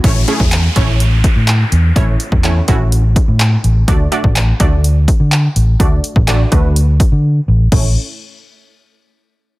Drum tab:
CC |----------------|----------------|----------------|----------------|
HH |x-x-x-x-x-x-x-x-|x-x-x-x-x-x-x-x-|x-x-x-x-x-x-x-x-|x-x-x-x-x-x-----|
CP |----x-------x---|----x-------x---|----x-------x---|----x-----------|
BD |o--o--o---o-----|o--o--o---o-----|o--o--o---o-----|o--o--o---o-----|

CC |x---------------|
HH |----------------|
CP |----------------|
BD |o---------------|